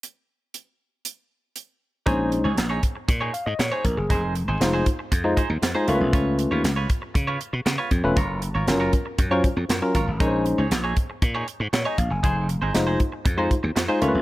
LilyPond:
<<
  \new Staff \with { instrumentName = "Clean electric guitar" } { \time 4/4 \key bes \minor \tempo 4 = 118 r1 | <ees' aes' des''>8 r16 <ees' aes' des''>16 r16 <ees' aes' des''>16 r8. <ees' aes' des''>16 r8. <ees' aes' des''>16 r8 | <ees' aes' c''>8 r16 <ees' aes' c''>16 r16 <ees' aes' c''>16 r4 <ees' aes' c''>16 r8 <ees' aes' c''>16 <f' ces'' des''>16 r16 | <f' ces'' des''>8 r16 <f' ces'' des''>16 r16 <f' ces'' des''>16 r8. <f' ces'' des''>16 r8. <f' ces'' des''>16 r8 |
<f' bes' des''>8 r16 <f' bes' des''>16 r16 <f' bes' des''>16 r8. <f' bes' des''>16 r4 <f' bes' des''>16 r16 | <ees' aes' des''>8 r16 <ees' aes' des''>16 r16 <ees' aes' des''>16 r8. <ees' aes' des''>16 r8. <ees' aes' des''>16 r8 | <ees' aes' c''>8 r16 <ees' aes' c''>16 r16 <ees' aes' c''>16 r8. <ees' aes' c''>16 r8. <ees' aes' c''>16 <f' ces'' des''>16 r16 | }
  \new Staff \with { instrumentName = "Tine electric piano" } { \time 4/4 \key bes \minor r1 | <aes des' ees' c''>8. r4. r16 f''16 ees''16 des''16 c''16 bes'16 aes'16~ | aes'16 r8. <aes ees' f' c''>8 r8. <aes ees' f' c''>16 r8 <f' c''>16 <aes ees' f' c''>16 <a des' f' bes' ces''>8~ | <a des' f' bes' ces''>4 r2 r8. <a des' f' ces''>16 |
r4 <ges des' f' bes'>8 r8. <ges des' f' c''>16 r8 <f' bes'>16 <ges des' f' bes'>16 r8 | <aes des' ees' bes' c''>8. r2 r16 des''16 ees''16 f''16 aes''16~ | aes''16 r8. <aes ees' f' c''>8 r8. <aes ees' f' c''>16 r8 <f' c''>16 <aes ees' f' c''>16 <a des' f' bes' ces''>8 | }
  \new Staff \with { instrumentName = "Slap bass" } { \clef bass \time 4/4 \key bes \minor r1 | bes,,8. des,16 bes,,8 r8 bes,8 r16 aes,16 bes,16 r16 bes,,16 ges,,16 | f,,8. aes,,16 f,,8 r8 f,8 r16 ees,16 f,16 r16 des,16 ces,16 | des,8. ees,16 des,8 r8 des8 r16 ces16 des16 r16 f,16 e,,16 |
ges,,8. aes,,16 ges,,8 r8 ges,8 r16 f,16 ges,16 r16 aes,,16 aes,,16 | bes,,8. des,16 bes,,8 r8 bes,8 r16 aes,16 bes,16 r16 bes,,16 ges,,16 | f,,8. aes,,16 f,,8 r8 f,8 r16 ees,16 f,16 r16 des,16 ces,16 | }
  \new DrumStaff \with { instrumentName = "Drums" } \drummode { \time 4/4 hh4 hh4 hh4 hh4 | <hh bd>8 hh8 <hc hh sn>8 <hh bd>8 <hh bd>8 hh8 <hc hh sn>8 <hh bd>8 | <hh bd>8 hh8 <hc hh sn>8 <hh bd>8 <hh bd>8 <hh bd>8 <hc hh sn>8 hh8 | <hh bd>8 hh8 <hc hh sn>8 <hh bd>8 <hh bd>8 hh8 <hc hh sn>8 <hh bd>8 |
<hh bd>8 hh8 <hc hh sn>8 <hh bd>8 <hh bd>8 <hh bd>8 <hc hh sn>8 <hh bd>8 | <hh bd>8 hh8 <hc hh sn>8 <hh bd>8 <hh bd>8 hh8 <hc hh sn>8 <hh bd>8 | <hh bd>8 hh8 <hc hh sn>8 <hh bd>8 <hh bd>8 <hh bd>8 <hc hh sn>8 hh8 | }
>>